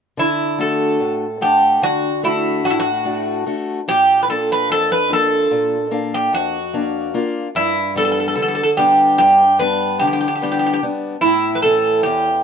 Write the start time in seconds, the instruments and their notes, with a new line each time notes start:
0.17 steel-string acoustic guitar D3, bouzouki E4
0.58 steel-string acoustic guitar A3 D4 F#4, bouzouki A4
1.00 steel-string acoustic guitar A2
1.41 steel-string acoustic guitar A3 D4 F#5, bouzouki G4
1.82 steel-string acoustic guitar D3, bouzouki F#4
2.23 steel-string acoustic guitar A3 D4 F#4, bouzouki E4
2.64 steel-string acoustic guitar A2, bouzouki F#4
2.70 bouzouki E4
2.80 bouzouki F#4
3.05 steel-string acoustic guitar A3 D4 F#4
3.46 steel-string acoustic guitar A3 D4 F#4
3.88 steel-string acoustic guitar A#2, bouzouki G4
4.23 bouzouki B4
4.28 steel-string acoustic guitar A#3 D4 F4, bouzouki A4
4.52 bouzouki B4
4.69 steel-string acoustic guitar F2, bouzouki A4
4.92 bouzouki B4
5.09 steel-string acoustic guitar A#3 D4 F4, bouzouki A4
5.51 steel-string acoustic guitar A#2
5.91 steel-string acoustic guitar A#3 D4 F5
6.14 bouzouki G4
6.33 steel-string acoustic guitar F2, bouzouki F#4
6.73 steel-string acoustic guitar A#3 D4 F5
7.14 steel-string acoustic guitar A#3 D4 F4
7.55 steel-string acoustic guitar G2, bouzouki E4
7.95 steel-string acoustic guitar G3 B3 D4, bouzouki A4
8.05 bouzouki A4
8.12 bouzouki A4
8.20 bouzouki A4
8.28 bouzouki A4
8.35 steel-string acoustic guitar D3, bouzouki A4
8.42 bouzouki A4
8.48 bouzouki A4
8.55 bouzouki A4
8.63 bouzouki A4
8.77 steel-string acoustic guitar G3 B3 D4, bouzouki G4
9.18 steel-string acoustic guitar G2, bouzouki G4
9.60 steel-string acoustic guitar G3 B3 D4, bouzouki B4
10.00 steel-string acoustic guitar D3, bouzouki G4
10.07 bouzouki G4
10.13 bouzouki G4
10.21 bouzouki G4
10.28 bouzouki G4
10.35 bouzouki G4
10.42 steel-string acoustic guitar G3 B3 D4, bouzouki G4
10.52 bouzouki G4
10.59 bouzouki G4
10.66 bouzouki G4
10.74 bouzouki G4
10.82 steel-string acoustic guitar G3 B3 D4
11.21 steel-string acoustic guitar A2, bouzouki E4
11.55 bouzouki B4
11.62 steel-string acoustic guitar E3 A3 C#4, bouzouki A4
12.03 steel-string acoustic guitar E2, bouzouki G4